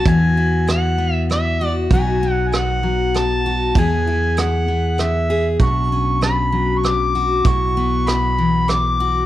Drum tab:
HH |x-x-x-|x-x-x-|x-x-x-|x-x-x-|
SD |--r-r-|--r-r-|--r-r-|--r-r-|
BD |o-----|o-----|o-----|o-----|

HH |x-x-x-|
SD |--r-r-|
BD |o-----|